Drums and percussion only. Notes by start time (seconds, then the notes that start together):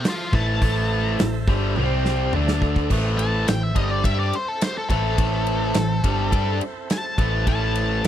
0.04 snare, open hi-hat
0.33 kick
0.62 kick, open hi-hat
1.19 snare, open hi-hat
1.48 kick
1.76 high tom
2.05 snare
2.33 mid tom
2.48 snare
2.62 kick
2.76 kick
2.90 kick, crash
3.19 ride
3.48 snare, ride
3.76 kick, ride
4.04 kick, ride
4.33 ride
4.61 snare, ride
4.90 kick, ride
5.18 kick, ride
5.47 ride
5.74 snare, ride
6.04 kick, ride
6.32 kick, ride
6.61 ride
6.90 snare, ride
7.18 kick, ride
7.47 kick, ride
7.75 ride
8.04 ride